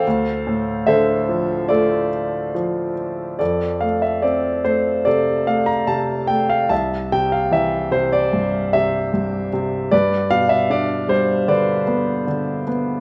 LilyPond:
<<
  \new Staff \with { instrumentName = "Grand piano" } { \time 4/4 \key f \major \tempo 4 = 73 << { f''4 e''4 d''4. r8 | d''8 f''16 e''16 d''8 c''8 d''8 f''16 bes''16 a''8 g''16 f''16 | a''8 g''16 f''16 e''8 c''16 d''8. e''4 r8 | d''8 f''16 e''16 d''8 c''8 d''4. r8 | } \\ { <a' c''>4 <a' c''>4 <f' a'>2 | a'2 a'2 | e''2 r2 | b'2 b'2 | } >> }
  \new Staff \with { instrumentName = "Grand piano" } { \clef bass \time 4/4 \key f \major d,8 a,8 d8 f8 a4 f4 | f,8 a8 c'8 a8 c8 a8 c8 a8 | c,8 c8 e8 c8 g,8 c8 g,8 c8 | g,8 b,8 d'8 g8 d8 b8 d8 b8 | }
>>